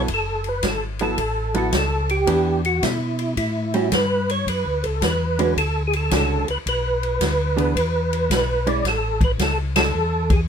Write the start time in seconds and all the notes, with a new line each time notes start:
0.08 F#1, kick, ride
0.14 A4
0.44 ride
0.48 B4
0.63 G#1, kick, snare, hi-hat pedal, ride
0.68 A4
0.99 F#3 B3 E4 A4, ride
1.18 A1, kick, ride
1.54 F#3 B3 E4 F#4 A4, ride
1.72 C#2, kick, snare, hi-hat pedal, ride
1.78 A4
2.09 G4, ride
2.27 E2 E3 B3 D4 G4, kick, ride
2.65 F#4, ride
2.82 B2 E4, kick, snare, hi-hat pedal, ride
3.19 ride
3.37 A2 E4, kick, ride
3.74 G3 C#4 F#4, ride
3.92 G2 B4, kick, snare, hi-hat pedal, ride
4.30 C#5, ride
4.47 F#2 B4, kick, ride
4.66 D2
4.83 C#2 A4, ride
5.02 E2 B4, kick, snare, hi-hat pedal, ride
5.39 D3 G#3 C#4 F#4, ride
5.57 D2 A4, kick, ride
5.87 G#4
5.93 A4, ride
6.11 C#2 D3 G#3 C#4 F#4, kick, snare, hi-hat pedal, ride
6.17 A4
6.48 C#2 B4, ride
6.66 B1 B4, kick, ride
7.03 ride
7.21 D2, kick, snare, hi-hat pedal, ride
7.56 E3 B3 D4 G#4, ride
7.76 E2, kick, ride
8.13 ride
8.30 B1 B4, kick, snare, hi-hat pedal, ride
8.67 G#3 C#4 E4 D5, ride
8.84 A1 A4, kick, snare, ride
9.21 B4, kick, ride
9.39 C#2 A4, kick, snare, hi-hat pedal, ride
9.76 A4, snare, ride
9.95 E2
10.30 G#4, kick, ride